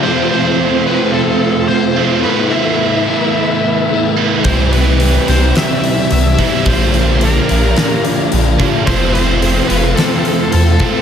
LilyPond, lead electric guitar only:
\new Staff \with { instrumentName = "Lead electric guitar" } { \time 4/4 \key f \lydian \tempo 4 = 109 c''8 c''4 b'8 a'4 c''4 | b'8 e''2. r8 | c''8 b'4 c''8 e''4 e''4 | c''4 bes'4. r4. |
c''8 c''4 b'8 a'4 a'4 | }